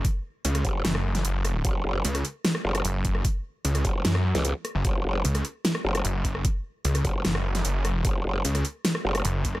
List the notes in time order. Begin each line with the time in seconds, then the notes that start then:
0.05 kick, closed hi-hat
0.45 C#2, closed hi-hat
0.55 cross-stick, closed hi-hat
0.65 F#1, kick, closed hi-hat
0.85 F#1, snare, closed hi-hat
0.95 cross-stick
1.15 snare, closed hi-hat
1.25 F#1, closed hi-hat
1.45 cross-stick, closed hi-hat
1.65 F#1, kick, closed hi-hat
1.85 F#1
2.05 C#2, closed hi-hat
2.15 cross-stick, closed hi-hat
2.25 closed hi-hat
2.45 snare, closed hi-hat
2.55 cross-stick
2.65 F#1
2.75 cross-stick, closed hi-hat
2.85 F#1, closed hi-hat
3.05 kick, closed hi-hat
3.15 cross-stick
3.25 kick, closed hi-hat
3.65 C#2, closed hi-hat
3.75 cross-stick, closed hi-hat
3.85 F#1, kick, closed hi-hat
4.05 F#2, snare, closed hi-hat
4.15 cross-stick
4.35 C#2, snare, closed hi-hat
4.45 closed hi-hat
4.65 cross-stick, closed hi-hat
4.75 F#1
4.85 F#1, kick, closed hi-hat
5.05 F#1
5.25 C#2, closed hi-hat
5.35 cross-stick, closed hi-hat
5.45 closed hi-hat
5.65 snare, closed hi-hat
5.75 cross-stick
5.85 F#1
5.95 cross-stick, closed hi-hat
6.05 F#1, closed hi-hat
6.25 kick, closed hi-hat
6.35 cross-stick
6.45 kick, closed hi-hat
6.85 C#2, closed hi-hat
6.95 cross-stick, closed hi-hat
7.05 F#1, kick, closed hi-hat
7.25 F#1, snare, closed hi-hat
7.35 cross-stick
7.55 snare, closed hi-hat
7.65 F#1, closed hi-hat
7.85 cross-stick, closed hi-hat
8.05 F#1, kick, closed hi-hat
8.25 F#1
8.45 C#2, closed hi-hat
8.55 cross-stick, closed hi-hat
8.65 closed hi-hat
8.85 snare, closed hi-hat
8.95 cross-stick
9.05 F#1
9.15 cross-stick, closed hi-hat
9.25 F#1, closed hi-hat
9.45 kick, closed hi-hat
9.55 cross-stick